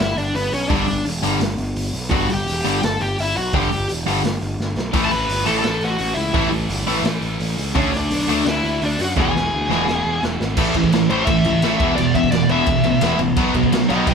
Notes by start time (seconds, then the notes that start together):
0.00 G1 E4 E5, snare
0.16 G1 D4 D5, open hi-hat
0.35 G1 B3 B4, open hi-hat
0.52 B1 C#4 C#5, open hi-hat
0.69 G1 G2 D3 G3 D4 D5, kick, open hi-hat
0.88 G1, open hi-hat
1.05 E1, open hi-hat
1.22 G1 G2 D3 G3, open hi-hat
1.39 G1, snare, open hi-hat
1.57 G1, open hi-hat
1.76 G1, open hi-hat
1.93 B1, open hi-hat
2.11 G1 G2 D3 G3 F#4 F#5, kick, open hi-hat
2.30 G1 G4, open hi-hat
2.34 G5
2.48 E1, open hi-hat
2.65 G1 G2 D3 G3, open hi-hat
2.83 G1 A4 A5, snare, open hi-hat
3.01 G1 G4 G5, open hi-hat
3.18 G1 E4 E5, open hi-hat
3.36 B1 F#4 F#5, open hi-hat
3.53 G1 G2 D3 G3 G4 G5, kick, open hi-hat
3.72 G1, open hi-hat
3.89 E1, open hi-hat
4.07 G1 G2 D3 G3, open hi-hat
4.24 G1, snare, open hi-hat
4.41 G1, open hi-hat
4.58 G1, snare
4.76 B1, snare
4.93 A1 A2 E3 A3, kick, open hi-hat, crash
5.05 A5
5.11 A1 B4 B5, open hi-hat
5.29 G1, open hi-hat
5.45 A1 A2 E3 A3 A4 A5, open hi-hat
5.59 A2 A5
5.63 A1 E3 A3 A4, snare, open hi-hat
5.81 A1, open hi-hat
5.85 F#5
5.90 F#4
5.98 A1, open hi-hat
6.14 C#2 E4 E5, open hi-hat
6.34 A1 A2 E3 A3, kick, open hi-hat
6.51 A1, open hi-hat
6.69 G1, open hi-hat
6.86 A1 A2 E3 A3, open hi-hat
7.03 A1 A2 E3 A3, snare, open hi-hat
7.21 A1, open hi-hat
7.40 A1, open hi-hat
7.58 C#2, open hi-hat
7.75 D2 D3 A3 C#4 D4 C#5, kick, open hi-hat
7.92 D2, open hi-hat
7.97 D4 D5
8.11 B1, open hi-hat
8.28 D2 D3 A3 D4, open hi-hat
8.45 D2 D3 A3 D4 E4, snare, open hi-hat
8.51 E5
8.64 D2, open hi-hat
8.82 D2 D4, open hi-hat
8.86 D5
8.99 F#2 F#4, open hi-hat
9.04 F#5
9.17 E1 E2 B2 E3 G#4, kick, snare
9.22 G#5
9.35 E1, snare
9.53 D2
9.70 E1 E2 B2 E3, snare
9.85 E1 E2 B2 E3, snare
10.05 E1
10.23 E1, snare
10.41 G#1, snare
10.57 A1 A2 E3 A3, kick, crash
10.74 A2 E3, kick, crash
10.84 kick
10.92 A1 A2 E3, snare, crash
11.10 A1 A2 E3 A3 C5, crash
11.25 A1 A2 E3 A3 E5, kick, crash
11.44 C#2 A2 E3, crash
11.62 A1 A2 E3 A3, snare, crash
11.80 E1 E2 B2 E3, kick, crash
11.96 E1 E2 B2 D5, crash
12.15 E2 B2 E5, kick, crash
12.24 kick
12.32 E1 E2 B2 D5, snare, crash
12.49 E1 E2 B2 E3 E5, crash
12.66 E1 E2 B2, kick, crash
12.84 A1 E2 B2, crash
13.01 E1 E2 B2 E3, snare, crash
13.19 A1 E2 B2, crash
13.36 B1 B2 F#3 B3, kick, crash
13.54 B2 F#3, kick, crash
13.63 kick
13.72 B1 B2 F#3, snare, crash
13.89 B1 B2 F#3 B3 D#5 G5, crash
14.07 B1 B2 F#3 B3 D#5 G5, kick, crash